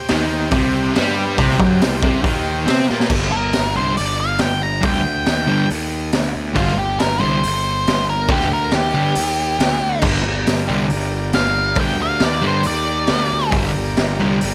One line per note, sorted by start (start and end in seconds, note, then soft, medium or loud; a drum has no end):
0.00 3.07 G4 medium
0.00 3.08 C5 medium
0.00 3.07 G5 medium
0.08 0.50 D#2 loud
0.08 0.50 D#3 loud
0.08 snare loud
0.08 open hi-hat medium
0.51 0.92 C2 loud
0.51 0.93 C3 loud
0.51 kick loud
0.51 open hi-hat medium
0.94 1.36 G3 loud
0.94 snare loud
0.94 open hi-hat medium
0.98 1.36 G2 medium
1.38 1.58 C2 loud
1.38 1.59 C3 loud
1.38 kick loud
1.38 open hi-hat medium
1.51 snare soft
1.60 1.79 F#2 loud
1.60 1.80 F#3 loud
1.60 kick loud
1.81 2.01 C2 medium
1.81 1.99 C3 medium
1.81 snare loud
1.81 open hi-hat medium
2.03 2.23 C2 medium
2.03 2.24 C3 loud
2.03 kick loud
2.24 2.64 D#2 loud
2.24 2.66 D#3 loud
2.24 kick loud
2.24 open hi-hat medium
2.66 2.87 C3 loud
2.66 2.88 C4 loud
2.66 snare loud
2.66 open hi-hat medium
2.88 3.10 A#2 loud
2.88 3.09 A#3 loud
2.88 snare medium
3.00 snare medium
3.10 3.51 G1 loud
3.10 3.28 G2 loud
3.10 3.28 D3 loud
3.10 3.28 G3 loud
3.10 kick loud
3.10 crash loud
3.22 snare soft
3.32 3.74 A#4 medium
3.53 snare loud
3.53 open hi-hat medium
3.57 3.76 G1 medium
3.75 3.97 C2 medium
3.75 3.92 G2 medium
3.75 3.93 D3 loud
3.75 3.93 G3 loud
3.75 3.97 C5 medium
3.97 4.38 G1 loud
3.97 4.18 D5 medium
3.97 open hi-hat medium
4.20 4.40 F5 medium
4.38 4.61 G5 medium
4.38 snare loud
4.38 open hi-hat medium
4.42 4.82 G1 loud
4.63 4.83 A#5 medium
4.81 5.24 D2 loud
4.81 4.99 G2 medium
4.81 5.00 D3 loud
4.81 5.00 G3 loud
4.81 kick loud
4.81 open hi-hat medium
4.85 5.68 G5 loud
4.94 snare soft
5.26 5.47 D#2 medium
5.26 snare loud
5.26 open hi-hat medium
5.47 5.65 G2 loud
5.47 5.69 G2 medium
5.47 5.65 D3 loud
5.47 5.65 G3 loud
5.70 6.11 D#2 medium
5.70 open hi-hat medium
6.12 6.33 D2 medium
6.12 snare loud
6.12 open hi-hat medium
6.35 6.55 D2 medium
6.54 6.97 G1 loud
6.54 6.72 G2 loud
6.54 6.73 D3 loud
6.54 6.74 G3 loud
6.54 6.77 F4 medium
6.54 kick loud
6.54 open hi-hat medium
6.67 snare soft
6.79 6.99 G4 medium
6.99 7.21 G1 loud
6.99 7.20 A#4 medium
6.99 snare loud
6.99 open hi-hat medium
7.20 7.43 C2 medium
7.20 7.38 G2 medium
7.20 7.38 D3 loud
7.20 7.38 G3 loud
7.20 8.05 C5 loud
7.43 7.85 G1 medium
7.43 open hi-hat medium
7.87 8.28 G1 medium
7.87 snare loud
7.87 open hi-hat medium
8.10 8.30 A#4 medium
8.28 8.70 D2 medium
8.28 8.46 G2 medium
8.28 8.46 D3 loud
8.28 8.47 G3 loud
8.28 8.52 G4 loud
8.28 kick loud
8.28 open hi-hat medium
8.40 snare soft
8.53 8.73 A#4 medium
8.71 8.93 D#2 medium
8.71 snare loud
8.71 open hi-hat medium
8.75 10.01 G4 loud
8.94 9.15 G2 medium
8.94 9.12 G2 loud
8.94 9.12 D3 loud
8.94 9.12 G3 loud
9.15 9.58 D#2 medium
9.15 open hi-hat medium
9.59 9.80 D2 loud
9.59 snare loud
9.59 open hi-hat medium
9.81 10.02 D2 medium
10.02 10.45 G1 medium
10.02 10.20 G2 medium
10.02 10.21 D3 medium
10.02 10.21 G3 loud
10.02 kick loud
10.02 crash loud
10.06 13.51 G4 medium
10.06 13.51 A#4 medium
10.06 13.51 D5 medium
10.16 snare soft
10.47 10.68 G1 loud
10.47 snare loud
10.47 open hi-hat medium
10.68 10.90 C2 loud
10.68 10.86 G2 loud
10.68 10.87 D3 loud
10.68 10.87 G3 loud
10.90 11.33 G1 medium
10.90 open hi-hat medium
11.33 11.76 G1 medium
11.33 11.77 F5 loud
11.33 snare loud
11.33 open hi-hat medium
11.75 12.19 D2 medium
11.75 11.95 G2 loud
11.75 11.95 D3 loud
11.75 11.96 G3 loud
11.75 kick loud
11.75 open hi-hat medium
11.81 12.01 G5 loud
11.87 snare soft
12.02 12.22 F5 loud
12.20 12.42 D#2 medium
12.20 snare loud
12.20 open hi-hat medium
12.24 12.45 D5 medium
12.42 12.60 G2 loud
12.42 12.64 G2 medium
12.42 12.61 D3 loud
12.42 12.61 G3 loud
12.47 12.66 C5 medium
12.63 13.07 D#2 medium
12.63 13.52 D5 loud
12.63 open hi-hat medium
13.07 13.30 D2 medium
13.07 snare loud
13.07 open hi-hat medium
13.33 13.53 D2 medium
13.51 13.95 G1 loud
13.51 13.70 G2 loud
13.51 13.70 D3 medium
13.51 13.71 G3 loud
13.51 14.54 G4 medium
13.51 14.54 A#4 medium
13.51 14.54 D5 loud
13.51 kick loud
13.51 open hi-hat medium
13.97 14.19 G1 loud
13.97 snare loud
13.97 open hi-hat medium
14.19 14.41 C2 loud
14.19 14.37 G2 loud
14.19 14.38 D3 loud
14.19 14.38 G3 loud
14.41 14.54 G1 loud
14.41 open hi-hat medium